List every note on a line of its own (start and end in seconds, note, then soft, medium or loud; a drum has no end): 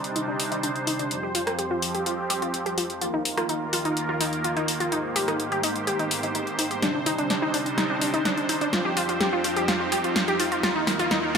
0.00 1.09 C3 medium
0.00 1.09 G3 medium
0.00 1.09 D4 medium
0.00 1.09 D#4 medium
0.00 2.98 C5 medium
0.00 riser medium
0.04 closed hi-hat medium
0.16 0.25 D#4 medium
0.16 closed hi-hat medium
0.28 0.31 D4 medium
0.40 open hi-hat medium
0.52 0.61 D#4 loud
0.52 closed hi-hat medium
0.63 0.67 D4 medium
0.63 closed hi-hat medium
0.76 closed hi-hat soft
0.87 0.96 D#4 medium
0.87 open hi-hat loud
0.99 1.03 D4 loud
0.99 closed hi-hat medium
1.11 3.00 F2 medium
1.11 3.00 F3 medium
1.11 3.00 C4 medium
1.11 3.00 G4 medium
1.11 closed hi-hat medium
1.23 1.32 G4 medium
1.35 1.39 F4 loud
1.35 open hi-hat loud
1.47 cross-stick medium
1.47 closed hi-hat soft
1.59 1.68 G4 medium
1.59 closed hi-hat medium
1.71 1.74 F4 loud
1.82 open hi-hat loud
1.95 2.03 G4 loud
1.95 closed hi-hat medium
2.06 2.10 F4 loud
2.06 closed hi-hat medium
2.30 2.39 G4 loud
2.30 open hi-hat loud
2.42 2.46 F4 loud
2.42 closed hi-hat medium
2.54 closed hi-hat medium
2.66 2.75 G4 loud
2.66 closed hi-hat soft
2.78 2.81 F4 medium
2.78 open hi-hat loud
2.90 closed hi-hat soft
3.01 4.90 D#2 medium
3.01 6.79 D#3 medium
3.01 6.79 A#3 medium
3.01 3.11 F4 loud
3.01 4.90 F4 medium
3.01 4.90 A#4 medium
3.01 closed hi-hat medium
3.14 3.17 D#4 loud
3.25 open hi-hat loud
3.37 3.46 F4 loud
3.37 cross-stick medium
3.37 closed hi-hat medium
3.49 3.53 D#4 medium
3.49 closed hi-hat medium
3.73 3.82 F4 loud
3.73 open hi-hat loud
3.85 3.89 D#4 loud
3.85 closed hi-hat medium
3.97 closed hi-hat medium
4.09 4.18 F4 medium
4.21 4.24 D#4 loud
4.21 open hi-hat loud
4.33 closed hi-hat soft
4.44 4.54 F4 medium
4.44 closed hi-hat medium
4.57 4.60 D#4 loud
4.57 closed hi-hat soft
4.68 open hi-hat loud
4.80 4.89 F4 loud
4.80 closed hi-hat soft
4.92 6.81 G#2 medium
4.92 4.96 D#4 loud
4.92 6.81 G4 medium
4.92 10.59 C5 medium
4.92 closed hi-hat medium
5.16 5.25 G4 loud
5.16 open hi-hat loud
5.28 5.31 D#4 loud
5.28 cross-stick medium
5.28 closed hi-hat medium
5.40 closed hi-hat medium
5.52 5.61 G4 loud
5.52 closed hi-hat soft
5.63 5.67 D#4 loud
5.63 open hi-hat loud
5.76 closed hi-hat medium
5.87 5.96 G4 loud
5.87 closed hi-hat medium
5.99 6.03 D#4 medium
5.99 closed hi-hat soft
6.11 open hi-hat loud
6.23 6.29 D#4 medium
6.23 closed hi-hat soft
6.35 6.44 D#4 medium
6.35 closed hi-hat medium
6.47 closed hi-hat soft
6.59 6.65 D#4 medium
6.59 open hi-hat loud
6.71 6.77 G4 medium
6.71 closed hi-hat soft
6.82 8.71 C3 medium
6.82 8.71 G3 medium
6.82 8.71 D4 medium
6.82 6.86 D4 loud
6.82 8.71 D#4 medium
6.82 snare soft
6.82 closed hi-hat medium
6.95 6.98 D4 medium
7.06 7.15 D#4 loud
7.06 open hi-hat loud
7.18 7.22 D4 loud
7.18 closed hi-hat soft
7.30 7.34 D4 medium
7.30 snare soft
7.30 closed hi-hat medium
7.42 7.51 D#4 loud
7.54 7.58 D4 loud
7.54 open hi-hat loud
7.66 7.70 D4 medium
7.66 closed hi-hat medium
7.78 7.87 D#4 loud
7.78 snare medium
7.78 closed hi-hat medium
7.90 7.93 D4 loud
8.02 8.05 D4 medium
8.02 open hi-hat loud
8.14 8.22 D#4 loud
8.14 closed hi-hat soft
8.25 8.29 D4 loud
8.25 snare medium
8.25 closed hi-hat medium
8.38 8.41 D4 medium
8.38 closed hi-hat soft
8.49 8.58 D#4 medium
8.49 open hi-hat loud
8.61 8.65 D4 loud
8.61 closed hi-hat soft
8.73 10.61 F2 medium
8.73 10.62 F3 medium
8.73 10.62 C4 medium
8.73 8.77 F4 medium
8.73 10.62 G4 medium
8.73 snare medium
8.73 closed hi-hat medium
8.85 8.94 G4 loud
8.97 9.00 F4 loud
8.97 open hi-hat loud
9.09 9.12 F4 medium
9.09 closed hi-hat medium
9.21 9.30 G4 medium
9.21 snare medium
9.21 closed hi-hat medium
9.33 9.36 F4 loud
9.44 9.48 F4 medium
9.44 open hi-hat loud
9.57 9.65 G4 loud
9.57 closed hi-hat medium
9.68 9.72 F4 loud
9.68 snare medium
9.68 closed hi-hat medium
9.80 9.84 F4 medium
9.92 10.01 G4 loud
9.92 open hi-hat loud
10.04 10.08 F4 loud
10.04 closed hi-hat soft
10.16 10.20 F4 medium
10.16 snare medium
10.16 closed hi-hat medium
10.28 10.37 G4 loud
10.28 closed hi-hat soft
10.40 10.43 F4 loud
10.40 open hi-hat loud
10.52 10.55 F4 medium
10.52 closed hi-hat medium
10.63 11.38 D#2 medium
10.63 11.38 D#3 medium
10.63 11.38 A#3 medium
10.63 11.38 F4 medium
10.63 10.73 F4 loud
10.63 11.38 A#4 medium
10.63 snare medium
10.63 closed hi-hat medium
10.76 10.79 D#4 loud
10.87 10.91 D#4 medium
10.87 snare medium
10.87 open hi-hat loud
10.99 11.08 F4 loud
10.99 closed hi-hat medium
11.11 11.15 D#4 loud
11.11 snare medium
11.11 closed hi-hat medium
11.23 11.27 D#4 medium